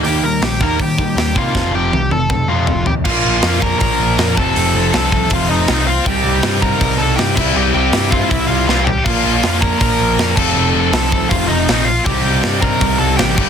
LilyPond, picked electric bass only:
\new Staff \with { instrumentName = "Picked electric bass" } { \clef bass \time 4/4 \key c \dorian \tempo 4 = 160 ees,8 ees,8 bes,,8 ees,8 ees4 ees,8 c8 | f,,8 f,,8 c,8 f,,8 f,4 f,,8 ees,8 | bes,,8 bes,,8 f,4 bes,,8 bes,,8 f,8 f,,8 | f,,8 f,,8 c,4 f,,8 f,,8 c,4 |
c,8 c,8 g,4 c,8 c,8 g,8 c,8 | c,8 c,8 g,4 c,8 c,8 c,4 | bes,,8 bes,,8 f,4 bes,,8 bes,,8 f,8 f,,8 | f,,8 f,,8 c,4 f,,8 f,,8 bes,,4 |
c,8 c,8 g,4 c,8 c,8 a,,8 g,,8 | }